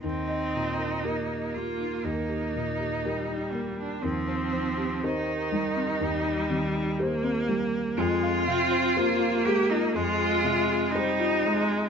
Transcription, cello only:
\new Staff \with { instrumentName = "Cello" } { \time 4/4 \key ees \major \tempo 4 = 60 ees'4. f'8 ees'4. bes16 d'16 | c'4 ees'2~ ees'8 r8 | f'4. g'16 ees'16 f'4 ees'4 | }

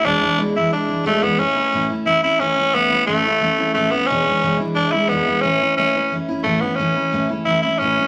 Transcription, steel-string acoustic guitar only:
\new Staff \with { instrumentName = "Steel-string acoustic guitar" } { \time 4/4 \key a \major \tempo 4 = 178 <e, b, e gis d' e'>8 <e gis d' e'>8 <e, b, e gis d' e'>8 <e gis d' e'>8 <e gis d' e'>8 <e gis d' e'>8 <e, b, e gis d' e'>8 <e gis d' e'>8 | <a, e a cis' e'>8 <a cis' e'>8 <a, e a cis' e'>8 <a cis' e'>8 <e a cis' e'>8 <a cis' e'>8 <a, e a cis' e'>8 <a cis' e'>8 | <a, e a cis' e'>8 <a cis' e'>8 <a, e a cis' e'>8 <a cis' e'>8 <e a cis' e'>8 <a cis' e'>8 <a, e a cis' e'>8 <a cis' e'>8 | <e, b, e gis d' e'>8 <e gis d' e'>8 <e, b, e gis d' e'>8 <e gis d' e'>8 <e gis d' e'>8 <e gis d' e'>8 <e, b, e gis d' e'>8 <e gis d' e'>8 |
<a, e a cis' e'>8 <a cis' e'>8 <a, e a cis' e'>8 <a cis' e'>8 <e a cis' e'>8 <a cis' e'>8 <a, e a cis' e'>8 <a cis' e'>8 | <a, e a cis' e'>8 <a cis' e'>8 <a, e a cis' e'>8 <a cis' e'>8 <e a cis' e'>8 <a cis' e'>8 <a, e a cis' e'>8 <a cis' e'>8 | }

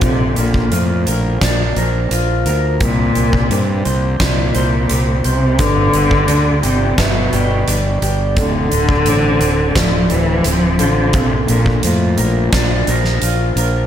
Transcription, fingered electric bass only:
\new Staff \with { instrumentName = "Fingered electric bass" } { \clef bass \time 4/4 \key bes \lydian \tempo 4 = 86 bes,,8 bes,,8 f,8 bes,,8 bes,,8 bes,,8 bes,,8 d,8 | c,8 c,8 g,8 c,8 c,8 c,8 c,8 c,8 | g,,8 g,,8 d,8 g,,8 g,,8 g,,8 g,,8 g,,8 | d,,8 d,,8 a,,8 d,,8 d,,8 d,,8 d,,8 a,,8 |
bes,,8 bes,,8 f,8 bes,,8 bes,,8 bes,,8 bes,,8 bes,,8 | }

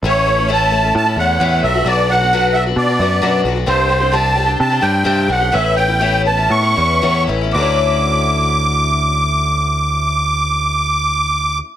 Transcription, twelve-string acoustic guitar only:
\new Staff \with { instrumentName = "Twelve-string acoustic guitar" } { \time 4/4 \key d \major \tempo 4 = 126 <a, e a cis' e'>8 <e a cis' e'>16 <a cis' e'>16 <a, e a cis' e'>8 <e a cis' e'>16 <a cis' e'>8 <a cis' e'>16 <e a cis' e'>8 <a, e a cis' e'>8 <fis b d' fis'>16 <b d' fis'>16 | <b, fis b d' fis'>8 <fis b d' fis'>16 <b d' fis'>16 <b, fis b d' fis'>8 <fis b d' fis'>16 <b d' fis'>8 <b d' fis'>16 <fis b d' fis'>8 <b, fis b d' fis'>8 <fis b d' fis'>16 <b d' fis'>16 | <c g c' d' g'>8 <g c' d' g'>16 <c' d' g'>16 <c g c' d' g'>8 <g c' d' g'>16 <c' d' g'>8 <c' d' g'>16 <g c' d' g'>8 <c g c' d' g'>8 <g c' d' g'>16 <c' d' g'>16 | <a, e b cis' e'>8 <e b cis' e'>16 <b cis' e'>16 <a, e b cis' e'>8 <e b cis' e'>16 <b cis' e'>8 <b cis' e'>16 <e b cis' e'>8 <a, e b cis' e'>8 <e b cis' e'>16 <b cis' e'>16 |
<d fis a cis' e'>1~ | <d fis a cis' e'>1 | }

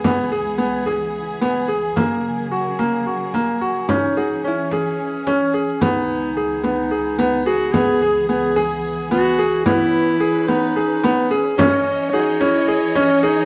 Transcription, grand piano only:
\new Staff \with { instrumentName = "Grand piano" } { \time 7/8 \key cis \minor \tempo 4 = 109 b8 gis'8 b8 gis'4 b8 gis'8 | ais4 fis'8 ais8 fis'8 ais8 fis'8 | cis'8 gis'8 cis'8 gis'4 cis'8 gis'8 | b4 gis'8 b8 gis'8 b8 gis'8 |
b8 gis'8 b8 gis'4 b8 gis'8 | b4 gis'8 b8 gis'8 b8 gis'8 | cis'4 gis'8 cis'8 gis'8 cis'8 gis'8 | }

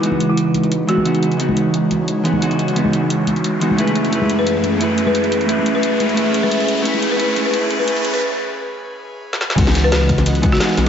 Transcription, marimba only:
\new Staff \with { instrumentName = "Marimba" } { \time 4/4 \key cis \minor \tempo 4 = 176 e'16 r8 e'8 r4 r16 fis'4. | r1 | r1 | r8. b'8 r4. b'8 r8. |
r8. b'8 r4. b'8 r8. | r8. b'16 r8. b'16 r8. b'16 r8. b'16 | r1 | r8. b'8 r4. fis'8 r8. | }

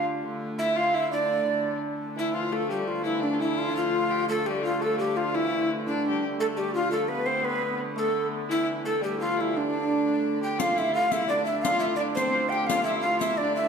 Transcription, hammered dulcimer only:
\new Staff \with { instrumentName = "Hammered dulcimer" } { \time 6/8 \key d \dorian \tempo 4. = 114 r4. e'8 f'8 e'8 | d'2 r4 | e8 f8 a8 g8 f8 e8 | d8 e8 f8 f4. |
a8 g8 f8 a8 g8 f8 | e4 r8 d8~ d32 g8 r16. | a8 g8 f8 a8 b8 c'8 | b8 b8 r8 a4~ a32 r16. |
e8 r8 a8 g8 f8 e8 | d2~ d8 g'8 | f'8 e'8 f'8 e'8 d'8 e'8 | f'8 e'8 d'8 c'8 f'8 g'8 |
f'8 e'8 f'8 e'8 d'8 e'8 | }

